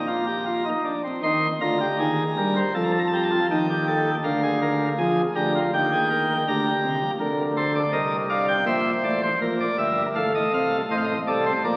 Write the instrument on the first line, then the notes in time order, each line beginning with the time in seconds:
pipe organ
Already playing: A#1 A#2 A#5
0.07 F4
0.27 G4
0.46 F4
0.65 D#4
0.85 D4
1.04 C4
1.23 D#2 D#3 D#4 C6
1.61 D2 D3 F4 A#5
1.81 G4
2.00 D#2 D#3 G#4
2.37 G2 G3 A#4
2.56 C5
2.75 F2 F3 A4 A5
2.84 A#5
2.91 A5
2.99 A#5
3.08 A5
3.13 G4 A#5
3.23 A5
3.31 F4
3.51 D#2 D#3 D#4 G5
3.70 G4
3.88 A4
4.24 D2 D3 A#4 F5
4.43 G#4
4.62 A#4
4.99 F2 F3 G#4 G#5
5.36 D2 D3 G4 A#5
5.55 F4
5.74 D#2 D#3 G4 G5
5.92 G#4
6.10 A#4
6.48 D2 D3 G4 A#5
6.84 C2 C3
7.02 A#1 A#2
7.20 D2 D3 A#4
7.57 A4 C5
7.75 D5
7.93 C2 C3 A#4 D#5
8.30 D5 F5
8.48 G5
8.66 A#1 A#2 C5 E5
9.04 A1 A2 D5
9.23 C5
9.41 A#1 A#2 A#4
9.60 D5
9.78 G1 G2 E5
10.15 A1 A2 A4 F5
10.35 D#5
10.54 C2 C3 F5
10.91 A1 A2 C5 D#5
10.98 F5
11.04 D#5
11.27 C2 C3 A4 D5
11.46 C5
11.65 A#1 A#2 A#4 D5